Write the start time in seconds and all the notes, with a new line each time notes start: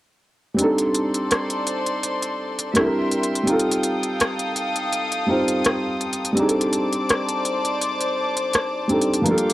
0.54 G3 C4
0.58 D4 D#4 A4 C5 D5 C6, closed hi-hat
0.63 A4
0.78 closed hi-hat
0.94 closed hi-hat
1.14 closed hi-hat
1.31 cross-stick, closed hi-hat
1.50 closed hi-hat
1.67 closed hi-hat
1.86 closed hi-hat
2.03 closed hi-hat
2.23 closed hi-hat
2.59 closed hi-hat
2.74 G3 C4 D4 E4 A#4 E5 G5 C6, cross-stick, closed hi-hat
2.78 A4
2.85 A#4
3.12 closed hi-hat
3.23 closed hi-hat
3.35 closed hi-hat
3.43 G3 C4
3.47 D#4 F4 A4 F5 D#6, closed hi-hat
3.52 A4
3.60 closed hi-hat
3.72 closed hi-hat
3.83 closed hi-hat
4.03 closed hi-hat
4.20 cross-stick, closed hi-hat
4.39 closed hi-hat
4.56 closed hi-hat
4.76 closed hi-hat
4.93 closed hi-hat
5.12 closed hi-hat
5.26 G3 C4 D#4 F4
5.31 C5
5.48 closed hi-hat
5.64 cross-stick, closed hi-hat
6.01 closed hi-hat
6.13 closed hi-hat
6.25 closed hi-hat
6.33 G3 C4 D5
6.37 D4 D#4 C5 A5 D6, closed hi-hat
6.42 G#4
6.48 A4, closed hi-hat
6.61 closed hi-hat
6.73 closed hi-hat
6.92 closed hi-hat
7.09 cross-stick, closed hi-hat
7.28 closed hi-hat
7.45 closed hi-hat
7.65 closed hi-hat
7.81 closed hi-hat
8.01 closed hi-hat
8.37 closed hi-hat
8.54 cross-stick, closed hi-hat
8.88 G3 C4 D4 D#4, closed hi-hat
8.92 A4
9.02 closed hi-hat
9.14 closed hi-hat
9.22 F3 A#3
9.26 G3 D4 F4 A4 F5 G5 D6, closed hi-hat
9.31 A4
9.38 closed hi-hat
9.50 closed hi-hat